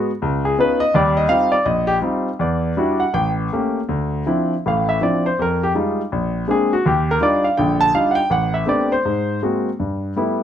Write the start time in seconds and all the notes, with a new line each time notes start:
Already playing: F#4
0.22 C#2
0.45 G#4
0.58 B3 C#4 D#4 F4 B4
0.80 D#5
0.94 D#2 G3 D5
1.17 D#5
1.29 G3 C4 D#4 F4 F5
1.52 D5
1.65 A#1 D#5
1.87 G4
2.02 G3 C4 D#4 F4
2.39 E2 D5
2.77 G3 D4 E4 F#4
3.00 F#5
3.14 A1 G5
3.53 A3 A#3 C#4 G4
3.89 D2
4.26 F3 C4 D4 E4
4.66 A1 A2 F5
4.89 E5
5.01 F3 C4 D4 E4 D5
5.26 C5
5.39 F2 A#4
5.63 G4
5.75 G3 G#3 D#4 F4
6.12 A#1
6.48 G#3 A#3 C4 D4 G#4
6.73 F#4
6.86 D#2 G4
7.11 A#4
7.21 G3 D4 D#4 F4 D5
7.44 F5
7.57 A#1 D3 G5
7.81 A5
7.95 G3 D4 D#4 F4 F5
8.11 F#5
8.15 G5
8.30 A1 F#5
8.54 E5
8.66 A3 B3 C4 D4 G4 D5
8.92 C5
9.05 G#2
9.43 G#3 A#3 C4 F#4
9.80 G2
10.16 G3 A3 B3 E4